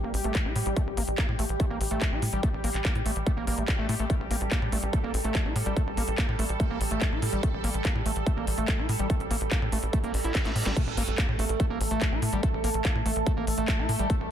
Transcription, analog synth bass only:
0.04 0.11 A1 medium
0.14 0.21 A1 loud
0.24 0.32 A1 medium
0.45 0.53 A1 medium
0.56 0.63 A2 loud
0.66 0.73 A1 loud
0.87 0.94 A1 medium
0.97 1.05 A1 loud
1.08 1.15 A1 medium
1.29 1.36 A2 medium
1.39 1.46 A1 loud
1.49 1.57 A1 medium
1.70 1.78 A1 medium
1.81 1.88 A1 loud
1.91 1.98 A1 medium
2.12 2.19 A1 medium
2.22 2.30 A2 loud
2.33 2.40 A1 medium
2.54 2.61 A1 medium
2.64 2.71 A1 loud
2.74 2.82 A1 medium
2.95 3.03 A2 medium
3.06 3.13 A1 loud
3.16 3.23 A1 medium
3.37 3.44 A1 medium
3.47 3.55 A1 loud
3.58 3.65 A1 medium
3.79 3.86 A1 medium
3.89 3.96 A2 loud
3.99 4.07 A1 medium
4.20 4.28 A1 medium
4.31 4.38 A1 loud
4.41 4.48 A1 medium
4.62 4.69 A2 medium
4.72 4.80 A1 loud
4.83 4.90 A1 medium
5.04 5.11 A1 medium
5.14 5.21 A1 loud
5.24 5.32 A1 medium
5.45 5.53 A1 medium
5.56 5.63 A2 loud
5.66 5.73 A1 medium
5.87 5.94 A1 medium
5.97 6.05 A1 loud
6.08 6.15 A1 medium
6.29 6.36 A2 medium
6.39 6.46 A1 loud
6.49 6.57 A1 medium
6.70 6.78 A1 medium
6.81 6.88 A1 loud
6.91 6.98 A1 medium
7.12 7.19 A1 medium
7.22 7.30 A2 loud
7.33 7.40 A1 medium
7.54 7.61 A1 medium
7.64 7.71 A1 loud
7.74 7.82 A1 medium
7.95 8.03 A2 medium
8.06 8.13 A1 loud
8.16 8.23 A1 medium
8.37 8.44 A1 medium
8.47 8.55 A1 loud
8.58 8.65 A1 medium
8.79 8.86 A1 medium
8.89 8.96 A2 loud
8.99 9.07 A1 loud
9.20 9.28 A1 medium
9.31 9.38 A1 loud
9.41 9.48 A1 loud
9.62 9.69 A2 medium
9.72 9.80 A1 loud
9.83 9.90 A1 medium
10.04 10.11 A1 medium
10.14 10.21 A1 loud
10.24 10.32 A1 loud
10.45 10.53 A1 medium
10.56 10.63 A2 loud
10.66 10.73 A1 medium
10.87 10.94 A1 medium
10.97 11.05 A1 loud
11.08 11.15 A1 medium
11.29 11.36 A2 medium
11.39 11.46 A1 loud
11.49 11.57 A1 medium
11.70 11.78 A1 medium
11.81 11.88 A1 loud
11.91 11.98 A1 medium
12.12 12.19 A1 medium
12.22 12.30 A2 loud
12.33 12.40 A1 loud
12.54 12.61 A1 medium
12.64 12.71 A1 loud
12.74 12.82 A1 medium
12.95 13.03 A2 medium
13.06 13.13 A1 loud
13.16 13.23 A1 medium
13.37 13.44 A1 medium
13.47 13.55 A1 loud
13.58 13.65 A1 medium
13.79 13.86 A1 medium
13.89 13.96 A2 loud
13.99 14.07 A1 loud
14.20 14.28 A1 medium

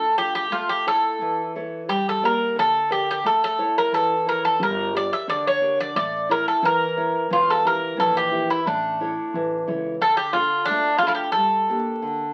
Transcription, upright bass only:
4.60 5.08 G1 medium
5.28 5.76 D2 medium
5.96 6.44 A1 medium
6.63 7.11 E2 medium
7.31 7.79 E1 medium
7.99 8.46 A#1 medium
8.66 9.14 A1 medium
9.34 9.65 A1 medium
9.68 9.99 C#2 medium

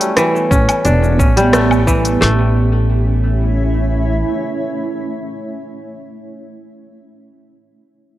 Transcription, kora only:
0.00 1.36 G3 loud
0.00 1.52 A3 loud
0.00 0.50 C#4 medium
0.17 1.86 E3 loud
0.51 0.91 C#4 loud
0.85 1.25 D4 medium
1.19 2.93 C#4 medium
1.37 2.26 G3 loud
1.53 2.20 A3 loud
1.87 2.26 E3 loud
2.21 4.21 A3 medium

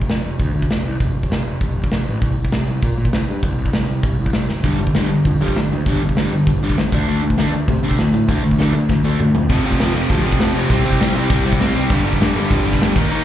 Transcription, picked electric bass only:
0.08 0.19 F1 medium
0.24 0.35 F1 medium
0.40 0.50 D2 medium
0.54 0.65 D2 medium
0.70 0.80 F1 medium
0.85 0.96 C2 medium
1.00 1.11 F1 medium
1.15 1.25 F1 medium
1.30 1.40 F1 medium
1.46 1.56 F1 medium
1.61 1.71 F1 medium
1.76 1.86 F1 medium
1.91 2.02 F1 medium
2.07 2.17 A1 medium
2.22 2.32 C2 medium
2.37 2.47 C2 medium
2.52 2.62 C2 medium
2.67 2.77 C2 medium
2.83 2.93 A#2 medium
2.98 3.08 A#2 medium
3.13 3.23 C2 medium
3.28 3.38 G2 medium
3.43 3.53 C2 medium
3.58 3.68 C2 medium
3.74 3.84 C2 medium
3.88 3.99 C2 medium
4.04 4.14 C2 medium
4.19 4.29 C2 medium
4.35 4.45 C2 medium
4.50 4.60 F#1 medium
4.64 4.74 G1 medium
4.80 4.90 G1 medium
4.96 5.06 G1 medium
5.10 5.21 G1 medium
5.25 5.36 F2 medium
5.40 5.51 F2 medium
5.55 5.65 G1 medium
5.70 5.81 D2 medium
5.86 5.96 G1 medium
6.01 6.11 G1 medium
6.16 6.26 G1 medium
6.31 6.42 G1 medium
6.47 6.57 G1 medium
6.61 6.71 G1 medium
6.77 6.87 G1 medium
6.92 7.02 D2 medium
7.07 7.18 D2 medium
7.23 7.33 D2 medium
7.37 7.47 D2 medium
7.51 7.62 D2 medium
7.68 7.78 C3 medium
7.83 7.93 C3 medium
7.98 8.08 D2 medium
8.13 8.23 A2 medium
8.28 8.39 D2 medium
8.43 8.53 D2 medium
8.59 8.69 D2 medium
8.74 8.84 D2 medium
8.90 9.00 D2 medium
9.04 9.14 D2 medium
9.19 9.30 D2 medium
9.35 9.45 F2 medium
9.50 9.59 F1 medium
9.65 9.75 F1 medium
9.80 9.89 F1 loud
9.95 10.04 F1 medium
10.10 10.19 D2 loud
10.25 10.34 F1 medium
10.40 10.49 F1 loud
10.55 10.65 F1 loud
10.70 10.79 C2 loud
10.86 10.95 C2 medium
11.00 11.09 C2 loud
11.15 11.25 C2 medium
11.30 11.49 C2 loud
11.59 11.69 C2 loud
11.74 11.84 C2 medium
11.90 12.00 G1 loud
12.05 12.14 G1 medium
12.21 12.30 G1 loud
12.35 12.44 G1 loud
12.51 12.60 F2 loud
12.66 12.75 G1 loud
12.82 12.91 E2 loud
12.96 13.05 D#2 loud
13.11 13.20 D#2 loud

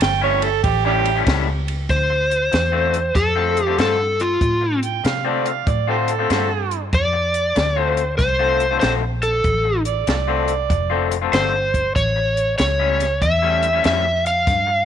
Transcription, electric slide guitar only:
1.90 3.19 C5 loud
3.16 3.65 A4 medium
3.65 3.79 G4 medium
3.81 4.22 A4 medium
4.21 4.79 F4 medium
6.94 7.82 D5 loud
7.82 8.17 C5 loud
8.18 8.77 C5 medium
8.80 8.91 C5 medium
9.23 9.82 A4 medium
11.34 11.92 C5 medium
11.96 12.54 C#5 medium
12.58 13.23 C#5 medium
13.22 13.85 E5 loud
13.86 14.27 E5 loud
14.27 14.85 F5 loud

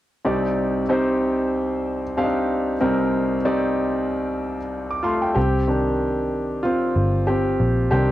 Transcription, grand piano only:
0.25 2.77 C2 medium
0.25 2.77 C3 medium
0.25 0.81 C4 medium
0.25 0.81 D#4 medium
0.25 0.81 G4 medium
0.25 0.81 D5 medium
0.89 2.01 C4 medium
0.89 2.01 D#4 medium
0.89 2.01 G4 medium
0.89 2.01 C5 medium
2.17 2.73 C4 medium
2.17 2.24 D4 soft
2.17 2.73 G4 medium
2.17 2.73 F5 medium
2.24 2.76 D#4 medium
2.81 5.32 C2 medium
2.81 5.32 C3 medium
2.81 3.37 C4 medium
2.81 3.37 D#4 medium
2.81 3.37 G4 medium
2.81 3.37 A#4 medium
3.45 4.57 C4 medium
3.45 4.57 D#4 medium
3.45 4.57 G4 medium
3.45 4.57 D5 medium
4.91 5.04 D6 medium
5.03 5.34 A3 medium
5.03 5.36 F4 medium
5.03 5.21 C6 medium
5.22 5.52 G5 medium
5.35 5.67 C4 medium
5.35 6.59 G4 medium
5.68 7.90 D#3 soft
5.68 6.64 C4 soft
5.68 7.91 D4 soft
6.63 7.25 C4 medium
6.63 7.23 F4 medium
7.27 7.89 C4 medium
7.27 7.89 G4 medium
7.91 8.12 D#3 soft
7.91 8.12 C4 medium
7.91 8.12 D4 soft
7.91 8.12 G4 medium

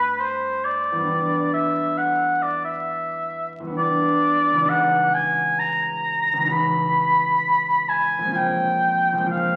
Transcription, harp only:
0.00 1.05 G2 soft
0.00 0.95 G3 soft
0.00 1.08 A3 soft
0.00 1.10 C4 soft
0.00 1.11 F4 soft
0.92 3.59 E2 medium
0.92 3.62 G3 soft
0.99 3.66 B3 soft
0.99 3.69 D4 soft
1.06 3.72 E4 soft
3.60 4.64 E2 soft
3.60 4.65 G3 soft
3.67 7.57 B3 soft
3.67 4.69 D4 soft
3.74 7.64 E4 soft
4.51 6.32 C#2 medium
4.51 6.35 E3 soft
4.57 6.39 C#4 soft
4.57 6.43 D#4 soft
4.65 6.46 F#4 soft
6.33 8.31 C#2 medium
6.33 8.33 E3 soft
6.40 8.28 C#4 soft
6.40 8.36 D#4 soft
6.47 8.38 F#4 soft
8.19 9.11 A#1 medium
8.19 9.15 G#3 soft
8.25 9.18 C4 soft
8.25 9.22 C#4 soft
8.32 9.25 F4 soft
9.13 9.56 A#1 medium
9.13 9.56 G#3 soft
9.20 9.56 C4 soft
9.20 9.56 C#4 soft
9.26 9.56 F4 soft

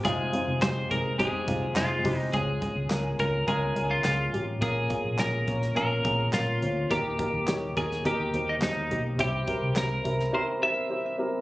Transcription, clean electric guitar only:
0.05 0.62 G#4 medium
0.62 0.91 C5 medium
0.91 1.19 A#4 medium
1.19 2.01 G#4 medium
1.77 2.18 F4 medium
2.18 2.30 D#4 medium
2.34 3.19 G#4 medium
3.20 3.47 A#4 medium
3.48 3.92 G#4 medium
3.91 4.04 F4 medium
4.05 4.45 F4 medium
4.63 5.19 G#4 medium
5.20 5.76 A#4 medium
5.77 6.35 A#4 medium
6.34 6.92 F4 medium
6.91 7.77 G4 medium
7.77 8.03 G#4 medium
8.07 8.50 G4 medium
8.49 8.54 D#4 medium
8.63 9.02 D#4 medium
9.21 9.77 G4 medium
9.78 10.30 A#4 medium
10.35 10.42 C5 medium
10.63 11.16 E5 loud

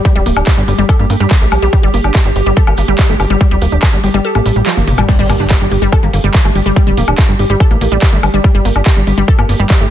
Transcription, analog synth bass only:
0.16 0.21 D1 medium
0.26 0.32 D1 loud
0.37 0.42 D1 medium
0.58 0.63 G1 medium
0.68 0.74 G1 loud
0.79 0.84 G1 medium
0.99 1.05 G2 medium
1.10 1.16 G2 loud
1.20 1.26 G2 medium
1.41 1.47 A#1 medium
1.52 1.58 A#1 loud
1.62 1.68 A#1 medium
1.83 1.89 G1 medium
1.94 2.00 G1 loud
2.04 2.10 G1 medium
2.25 2.31 G1 medium
2.36 2.42 G1 loud
2.46 2.52 G1 medium
2.67 2.73 G1 medium
2.78 2.84 G1 loud
2.88 2.94 G1 medium
3.09 3.15 G1 medium
3.20 3.26 G1 loud
3.30 3.36 G1 medium
3.51 3.57 D1 medium
3.62 3.68 D1 loud
3.72 3.78 D1 medium
3.93 3.99 G1 medium
4.04 4.10 G1 loud
4.14 4.20 G1 medium
4.35 4.41 A1 medium
4.46 4.52 A1 loud
4.56 4.62 A1 medium
4.77 4.83 G1 medium
4.88 4.93 G1 loud
4.98 5.04 G1 medium
5.19 5.25 G1 medium
5.30 5.35 G1 loud
5.40 5.46 G1 medium
5.61 5.67 G1 medium
5.72 5.77 G1 loud
5.82 5.88 G1 loud
6.03 6.09 G1 medium
6.13 6.19 G1 loud
6.24 6.30 G1 medium
6.45 6.51 G1 medium
6.55 6.61 G1 loud
6.66 6.72 G1 loud
6.87 6.93 D1 medium
6.97 7.03 D1 loud
7.08 7.14 D1 medium
7.29 7.35 G1 medium
7.39 7.45 G1 loud
7.50 7.56 G1 medium
7.71 7.77 A1 medium
7.81 7.87 A1 loud
7.92 7.98 A1 medium
8.13 8.19 G1 medium
8.23 8.29 G1 loud
8.34 8.40 G1 medium
8.55 8.61 G1 medium
8.65 8.71 G1 loud
8.76 8.82 G1 medium
8.97 9.03 G1 medium
9.07 9.13 G1 loud
9.18 9.24 G1 medium
9.39 9.45 G1 medium
9.49 9.55 G1 loud
9.60 9.65 G1 medium
9.81 9.86 G1 medium

